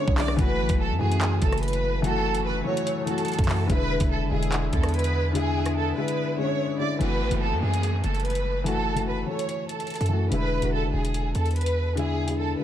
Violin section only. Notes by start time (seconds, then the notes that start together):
Already playing: C#5
0.18 D5
0.39 B4
0.80 A4
1.01 G#4
1.42 A4
1.63 B4
2.04 A4
2.45 B4
2.66 C#5
3.07 A4
3.70 B4
4.11 A4
4.32 G#4
4.73 A4
4.94 B4
5.35 G#4
5.76 A4
5.97 B4
6.39 C#5
6.80 D5
7.01 B4
7.42 A4
7.63 G#4
8.04 A4
8.25 B4
8.66 A4
9.08 B4
9.28 C#5
9.70 A4
10.32 B4
10.73 A4
10.94 G#4
11.35 A4
11.56 B4
11.97 G#4
12.38 A4
12.59 B4